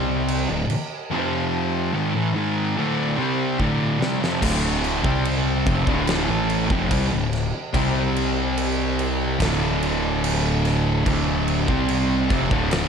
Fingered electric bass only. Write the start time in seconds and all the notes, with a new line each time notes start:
Already playing: C2
0.49 D1
0.70 muted fingered electric bass stroke
4.43 D1
5.05 C2
5.67 F1
5.88 D1
6.28 A1
6.71 F1
6.91 C2
7.12 D1
7.75 C2
9.40 D1
11.06 D1
11.68 C2
12.31 F1
12.51 D1